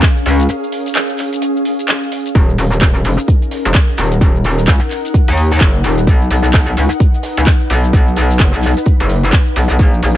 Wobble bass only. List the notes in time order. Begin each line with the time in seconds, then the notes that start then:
0.26 C#2
2.35 D#1
2.58 D#1
3.05 F1
3.65 F1
3.98 D#1
4.21 D#1
4.68 C#2
5.28 D#2
5.61 F#1
5.84 D#1
6.07 B1
6.30 B1
6.77 C#2
7.37 C#2
7.70 B1
7.93 B1
8.40 F#1
8.54 B1
9.00 F#1
9.56 B1
9.70 B1
9.79 A#1
10.03 A#1